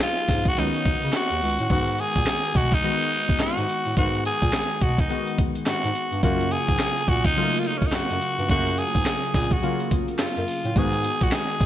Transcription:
Already playing: synth keys F#3 B3 D#4 G#4
0.00 tenor saxophone F4, snare, clap, closed hi-hat
0.18 closed hi-hat
0.29 bass clarinet G#2, kick, snare, open hi-hat
0.45 tenor saxophone F#4, kick, closed hi-hat
0.57 bass clarinet C#2, synth keys D#3 B3 C#4 F#4, tenor saxophone D#4, closed hi-hat
0.74 closed hi-hat
0.85 bass clarinet C#3, kick, closed hi-hat
1.02 bass clarinet C#3, closed hi-hat
1.13 tenor saxophone F#4, snare, clap, closed hi-hat
1.30 bass clarinet D#2, closed hi-hat
1.42 bass clarinet C#2, open hi-hat
1.59 bass clarinet A2, closed hi-hat
1.70 bass clarinet G#2, synth keys D#3 G#3 B3 F#4, tenor saxophone F#4, kick, closed hi-hat, crash
1.88 closed hi-hat
1.98 tenor saxophone G#4, closed hi-hat
2.16 bass clarinet A#2, kick, closed hi-hat
2.27 snare, clap, closed hi-hat
2.44 closed hi-hat
2.55 bass clarinet B2, tenor saxophone F#4, kick, closed hi-hat
2.72 tenor saxophone D#4, kick, closed hi-hat
2.84 synth keys D#3 G#3 B3 F#4, closed hi-hat
3.01 closed hi-hat
3.12 closed hi-hat
3.29 kick, closed hi-hat
3.39 bass clarinet G#2, tenor saxophone F#4, snare, clap, closed hi-hat
3.57 bass clarinet G#2, closed hi-hat
3.69 closed hi-hat
3.86 bass clarinet A2, closed hi-hat
3.97 bass clarinet G#2, synth keys D#3 G#3 B3 F#4, tenor saxophone F#4, kick, closed hi-hat
4.14 closed hi-hat
4.25 tenor saxophone G#4, closed hi-hat
4.42 bass clarinet A#2, kick, closed hi-hat
4.53 snare, clap, closed hi-hat
4.71 closed hi-hat
4.81 bass clarinet B2, tenor saxophone F#4, kick, closed hi-hat
4.98 tenor saxophone D#4, kick, closed hi-hat
5.10 synth keys D#3 G#3 B3 F#4, closed hi-hat
5.27 closed hi-hat
5.38 kick, closed hi-hat
5.55 closed hi-hat
5.66 bass clarinet G#2, tenor saxophone F#4, snare, clap, closed hi-hat
5.84 bass clarinet G#2, closed hi-hat
5.95 closed hi-hat
6.12 bass clarinet G2, closed hi-hat
6.23 bass clarinet F#2, synth keys C#3 F#3 A#3 F4, tenor saxophone F#4, kick, closed hi-hat
6.40 closed hi-hat
6.51 tenor saxophone G#4, closed hi-hat
6.69 bass clarinet G#2, kick, closed hi-hat
6.79 snare, clap, closed hi-hat
6.97 closed hi-hat
7.08 bass clarinet A#2, tenor saxophone F#4, kick, closed hi-hat
7.25 tenor saxophone D#4, kick, closed hi-hat
7.36 synth keys C#3 F#3 A3 F4, closed hi-hat
7.44 synth keys A#3
7.54 closed hi-hat
7.59 tenor saxophone F4
7.65 tenor saxophone D#4, closed hi-hat
7.78 tenor saxophone C#4, kick, closed hi-hat
7.87 tenor saxophone D#4
7.92 bass clarinet F#2, tenor saxophone F#4, snare, clap, closed hi-hat
8.10 bass clarinet F#2, closed hi-hat
8.21 closed hi-hat
8.39 bass clarinet G2, closed hi-hat
8.49 bass clarinet F#2, synth keys C#3 F#3 A#3 G#4, tenor saxophone F#4, kick, closed hi-hat, tambourine
8.67 closed hi-hat
8.78 tenor saxophone G#4, closed hi-hat, tambourine
8.95 bass clarinet G#2, kick, closed hi-hat
9.06 snare, clap, closed hi-hat, tambourine
9.24 closed hi-hat
9.34 bass clarinet A#2, tenor saxophone G#4, kick, snare, open hi-hat, tambourine
9.51 tenor saxophone F#4, kick, closed hi-hat
9.63 synth keys C#3 F#3 A#3 F4, closed hi-hat
9.80 closed hi-hat
9.91 kick, closed hi-hat, tambourine
10.08 closed hi-hat
10.19 bass clarinet F#2, tenor saxophone F4, snare, clap, closed hi-hat, tambourine
10.37 bass clarinet F#2, closed hi-hat
10.48 open hi-hat, tambourine
10.65 bass clarinet A2, closed hi-hat
10.76 bass clarinet G#2, synth keys D#3 G#3 B3 F#4, tenor saxophone G#4, kick, closed hi-hat, tambourine
10.93 closed hi-hat
11.04 closed hi-hat, tambourine
11.21 bass clarinet A#2, tenor saxophone F#4, kick, closed hi-hat
11.32 tenor saxophone G#4, snare, clap, closed hi-hat, tambourine
11.50 closed hi-hat
11.61 bass clarinet B2, kick, closed hi-hat, tambourine

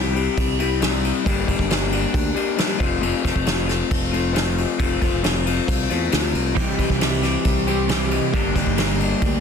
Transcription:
Already playing: fingered electric bass C2, clean electric guitar G3 C4 E4 G4
0.15 clean electric guitar C4 E4 G4, ride
0.38 fingered electric bass C2, kick, ride
0.59 clean electric guitar C4 E4 G4, ride
0.80 clean electric guitar C3 G3 C4 E4 G4, snare, ride
1.04 ride
1.24 fingered electric bass G1, clean electric guitar G3 A#3 D4 G4, kick, ride
1.47 fingered electric bass G1, clean electric guitar A#3 D4 G4, kick, ride
1.59 fingered electric bass G1, kick
1.69 clean electric guitar G3 A#3 D4 G4, snare, ride
1.91 clean electric guitar A#3 D4 G4, ride
2.14 fingered electric bass D2, kick, ride
2.35 clean electric guitar A#3 D4 G4, ride
2.57 clean electric guitar G3 A#3 D4 G4, snare, ride
2.78 fingered electric bass F1, clean electric guitar F3 A3 C4 F4, kick, ride
3.01 fingered electric bass F1, clean electric guitar F3 A3 C4 F4, ride
3.23 fingered electric bass F1, clean electric guitar A3 C4 F4, kick, snare, ride
3.35 fingered electric bass F1, kick
3.46 clean electric guitar F3 A3 C4 F4, snare, ride
3.66 clean electric guitar A3 C4 F4, ride
3.70 snare
3.91 fingered electric bass F1, kick, ride
4.11 clean electric guitar A3 C4 F4, ride
4.33 clean electric guitar F3 A3 C4 F4, ride
4.37 snare
4.58 ride
4.78 fingered electric bass F1, clean electric guitar F3 A3 C4 F4, kick, ride
5.00 fingered electric bass F1, clean electric guitar A3 C4 F4, kick, ride
5.14 fingered electric bass F1
5.23 clean electric guitar F3 A3 C4 F4, snare, ride
5.46 clean electric guitar A3 C4 F4, ride
5.68 fingered electric bass C2, kick, ride
5.90 fingered electric bass E2, clean electric guitar A3 C4 F4, ride
6.11 fingered electric bass D2, clean electric guitar F3 A3 C4 F4, snare, ride
6.34 fingered electric bass C2, ride
6.55 fingered electric bass C2, clean electric guitar C3 E3 G3 C4 E4 G4, kick, crash
6.77 fingered electric bass C2, clean electric guitar G3 C4 G4, kick, ride
6.90 fingered electric bass C2, kick
6.99 clean electric guitar E3 G3 C4 E4 G4, snare, ride
7.21 clean electric guitar G3 C4 G4, snare, ride
7.45 fingered electric bass C2, kick, ride
7.67 clean electric guitar G3 C4 E4 G4, ride
7.89 clean electric guitar C3 E3 G3 C4 E4 G4, snare, ride
8.11 clean electric guitar G3 E4 G4, ride
8.32 fingered electric bass G1, clean electric guitar G2 D3 G3 A#3 D4 G4, kick, ride
8.55 fingered electric bass G1, clean electric guitar A#3 D4 G4, kick, snare, ride
8.67 fingered electric bass G1, kick
8.77 clean electric guitar G3 A#3 D4 G4, snare, ride
9.00 clean electric guitar A#3 D4 G4, ride
9.21 fingered electric bass D2, kick, ride

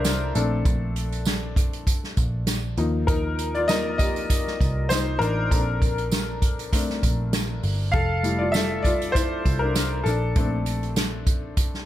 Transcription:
Already playing: picked electric bass C2, upright piano E3 G3 A3 D4 E4 F4 A4 A#4 C5 D5 E5 F5
0.05 snare, closed hi-hat, tambourine
0.35 picked electric bass A#1, upright piano A3 C4 D4 A4, closed hi-hat
0.65 picked electric bass A#1, kick, closed hi-hat
0.96 closed hi-hat
1.12 closed hi-hat
1.25 snare, closed hi-hat, tambourine
1.56 kick, closed hi-hat
1.73 closed hi-hat
1.87 kick, closed hi-hat
2.04 snare
2.17 picked electric bass A#1, kick, closed hi-hat
2.47 snare, closed hi-hat, tambourine
2.77 picked electric bass D#2, upright piano F3 A#3 D#4, closed hi-hat
3.07 upright piano D#4 A#4, kick, closed hi-hat
3.39 closed hi-hat
3.55 upright piano F4 D5, closed hi-hat
3.68 upright piano F3 A#3 D#4 A#4 D#5, snare, closed hi-hat, tambourine
3.98 upright piano G4 D#5, kick, closed hi-hat
4.16 closed hi-hat
4.30 kick, closed hi-hat
4.47 snare
4.61 picked electric bass C2, kick, closed hi-hat
4.89 upright piano D#4 C5, snare, closed hi-hat, tambourine
5.19 picked electric bass A1, upright piano D4 A#4, closed hi-hat
5.51 picked electric bass A#1, upright piano C4 D4 A4, kick, closed hi-hat
5.82 kick, closed hi-hat
5.98 closed hi-hat
6.11 snare, closed hi-hat, tambourine
6.42 kick, closed hi-hat
6.59 closed hi-hat
6.72 upright piano A3 C4 D4, kick, closed hi-hat
6.90 snare
7.03 picked electric bass A#1, kick, closed hi-hat
7.33 snare, closed hi-hat, tambourine
7.63 picked electric bass G1, open hi-hat
7.92 picked electric bass F1, upright piano A4 F5, kick, closed hi-hat
8.23 upright piano G3 A3 E4, closed hi-hat
8.39 upright piano F4 D5
8.52 upright piano A4 E5, snare, closed hi-hat, tambourine
8.83 upright piano F4 D5, kick, closed hi-hat
9.01 closed hi-hat
9.12 upright piano E4 C5, kick, closed hi-hat
9.45 picked electric bass C2, kick, closed hi-hat
9.59 upright piano A#4
9.64 upright piano D4
9.75 snare, closed hi-hat, tambourine
10.04 picked electric bass A#1, upright piano D4 A4, closed hi-hat
10.36 picked electric bass A#1, upright piano A3 C4 D4, kick, closed hi-hat
10.66 closed hi-hat
10.83 closed hi-hat
10.96 snare, closed hi-hat, tambourine
11.27 kick, closed hi-hat
11.57 kick, closed hi-hat
11.74 snare

